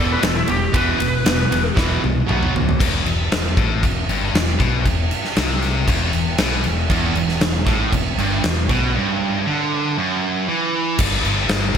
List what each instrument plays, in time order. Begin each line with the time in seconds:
Already playing: fingered electric bass E1
0.00 distorted electric guitar E2 B2 E3, lead electric guitar A4
0.12 lead electric guitar B4
0.23 fingered electric bass E1, distorted electric guitar E2 B2, lead electric guitar A4, snare, ride
0.35 lead electric guitar E4
0.48 fingered electric bass E1, distorted electric guitar E2 B2, lead electric guitar G4, ride
0.74 fingered electric bass E1, distorted electric guitar E2 B2 E3, lead electric guitar B4, kick, ride
0.99 fingered electric bass E1, distorted electric guitar E2 B2, ride
1.26 fingered electric bass E1, distorted electric guitar E2 B2, snare, ride
1.51 fingered electric bass E1, distorted electric guitar E2 B2, ride
1.76 fingered electric bass E1, distorted electric guitar E2 B2 E3, kick, snare
2.03 fingered electric bass C2, distorted electric guitar E2 B2, high tom
2.28 fingered electric bass B1, distorted electric guitar B2 F#3 B3, mid tom
2.43 mid tom
2.54 fingered electric bass D2, distorted electric guitar B2 F#3, floor tom
2.69 floor tom
2.80 fingered electric bass E1, distorted electric guitar E2, kick, crash
3.06 fingered electric bass E1, distorted electric guitar E2, crash
3.32 fingered electric bass E1, distorted electric guitar E2, snare, crash
3.57 fingered electric bass A1, distorted electric guitar A2, kick, crash
3.83 fingered electric bass E1, distorted electric guitar E2, kick, crash
4.09 fingered electric bass G1, distorted electric guitar G2, crash
4.34 fingered electric bass E1, distorted electric guitar E2, snare, crash
4.59 fingered electric bass B1, distorted electric guitar B2, kick, crash
4.85 fingered electric bass E1, distorted electric guitar E2, kick, crash
5.11 crash
5.25 snare
5.36 fingered electric bass C2, distorted electric guitar C3, snare, crash
5.62 snare, crash
5.87 fingered electric bass E1, distorted electric guitar E2, kick, crash
6.13 fingered electric bass E1, distorted electric guitar E2, crash
6.38 fingered electric bass B1, distorted electric guitar B2, snare, crash
6.64 fingered electric bass E1, distorted electric guitar E2, crash
6.90 fingered electric bass E1, distorted electric guitar E2, kick, crash
7.15 fingered electric bass E1, distorted electric guitar E2, crash
7.29 snare
7.41 fingered electric bass E1, distorted electric guitar E2, snare, crash
7.67 fingered electric bass A1, distorted electric guitar A2, kick, snare, crash
7.93 fingered electric bass E1, distorted electric guitar E2, kick, crash
8.18 fingered electric bass G1, distorted electric guitar G2, crash
8.44 fingered electric bass E1, distorted electric guitar E2, snare, crash
8.69 fingered electric bass B1, distorted electric guitar B2, kick, crash
8.95 distorted electric guitar G2
9.47 distorted electric guitar D3
9.97 distorted electric guitar F#2
10.49 distorted electric guitar E3
10.99 fingered electric bass G1, distorted electric guitar G2 D3 G3, kick, crash
11.24 fingered electric bass G1, distorted electric guitar G2 D3 G3, crash
11.48 fingered electric bass G1, distorted electric guitar G2 D3 G3, snare, crash
11.74 fingered electric bass G1, distorted electric guitar G2, crash